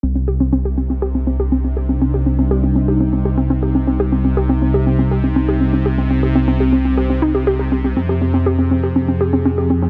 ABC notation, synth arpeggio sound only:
X:1
M:4/4
L:1/16
Q:1/4=121
K:Cm
V:1 name="Synth arpeggio sound"
C C G C C G C C G C C G C C G C | C G C C G C C G C C G C C G C C | G C C G C C G C C G C C G C C G | C C G C C G C C G C E G G G C C |
C G C C G C C G C C G C C G C C |]